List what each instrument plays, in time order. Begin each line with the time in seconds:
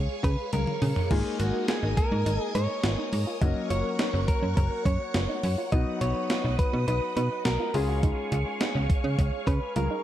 Already playing: grand piano G#3 C#4 F4 G#4, string machine G#4 C#5 F5 C#6, clean electric guitar C#5
0.24 fm bass C#3, clean electric guitar B4, kick, closed hi-hat
0.53 fm bass C#2, clean electric guitar A#4, closed hi-hat, high tom
0.67 mid tom
0.82 fm bass C#3, mid tom, open hi-hat
0.96 floor tom
1.11 fm bass G#1, grand piano G#3 A#3 D#4 G#4, synth arpeggio sound F4, clean electric guitar G#4, string machine A#4 D#5 G#5 D#6, kick, crash
1.40 fm bass G#1, synth arpeggio sound F#4, clean electric guitar F#4, closed hi-hat
1.68 synth arpeggio sound F4, clean electric guitar G#4, snare, closed hi-hat
1.83 fm bass G#1, synth arpeggio sound D#4
1.97 clean electric guitar A#4, kick, closed hi-hat
2.12 fm bass G#2, synth arpeggio sound D#4
2.26 fm bass G#1, synth arpeggio sound D#4, closed hi-hat
2.43 clean electric guitar G#4
2.55 fm bass G#2, synth arpeggio sound D#4, clean electric guitar C#5, closed hi-hat
2.83 fm bass G#1, synth arpeggio sound F4, snare, closed hi-hat
2.98 synth arpeggio sound D#4
3.13 fm bass G#2, open hi-hat
3.27 synth arpeggio sound F4
3.42 fm bass F#1, grand piano F#3 A#3 C#4 F#4, synth arpeggio sound D#4, string machine C#5 F#5 C#6, clean electric guitar D#5, kick, closed hi-hat
3.70 fm bass F#1, synth arpeggio sound F4, clean electric guitar C#5, closed hi-hat
3.99 synth arpeggio sound D#4, snare, closed hi-hat
4.14 fm bass F#1, synth arpeggio sound C#4
4.28 clean electric guitar A#4, kick, closed hi-hat
4.42 fm bass F#2, synth arpeggio sound C#4
4.57 fm bass F#1, synth arpeggio sound C#4, clean electric guitar A#4, kick, closed hi-hat
4.85 fm bass F#2, synth arpeggio sound C#4, clean electric guitar C#5, kick, closed hi-hat
5.14 fm bass F#1, synth arpeggio sound F4, snare, closed hi-hat
5.29 synth arpeggio sound D#4
5.43 fm bass F#2, open hi-hat
5.58 synth arpeggio sound F4
5.72 fm bass B1, grand piano F#3 B3 D#4 F#4, synth arpeggio sound D#4, string machine B4 D#5 D#6, clean electric guitar D#5, kick, closed hi-hat
6.01 fm bass B1, synth arpeggio sound F#4, clean electric guitar C#5, closed hi-hat
6.30 synth arpeggio sound F4, snare, closed hi-hat
6.44 fm bass B1, synth arpeggio sound D#4
6.59 clean electric guitar B4, kick, closed hi-hat
6.73 fm bass B2, synth arpeggio sound D#4
6.88 fm bass B1, synth arpeggio sound D#4, clean electric guitar B4, closed hi-hat
7.17 fm bass B2, synth arpeggio sound D#4, clean electric guitar B4, closed hi-hat
7.45 fm bass B1, synth arpeggio sound F#4, clean electric guitar A#4, snare, closed hi-hat
7.60 synth arpeggio sound F4
7.74 fm bass C#2, grand piano G#3 C#4 F4 G#4, clean electric guitar G#4, string machine G#4 C#5 F5 C#6, open hi-hat
7.89 synth arpeggio sound F#4
8.03 synth arpeggio sound D#4, kick, closed hi-hat
8.32 fm bass C#2, synth arpeggio sound F4, closed hi-hat
8.61 synth arpeggio sound D#4, snare, closed hi-hat
8.75 fm bass C#2, synth arpeggio sound C#4
8.90 kick, closed hi-hat
9.04 fm bass C#3, synth arpeggio sound C#4
9.18 fm bass C#2, synth arpeggio sound C#4, kick, closed hi-hat
9.47 fm bass C#3, synth arpeggio sound C#4, clean electric guitar B4, kick, closed hi-hat
9.76 fm bass C#2, synth arpeggio sound F4, clean electric guitar A#4, closed hi-hat, high tom
9.91 synth arpeggio sound D#4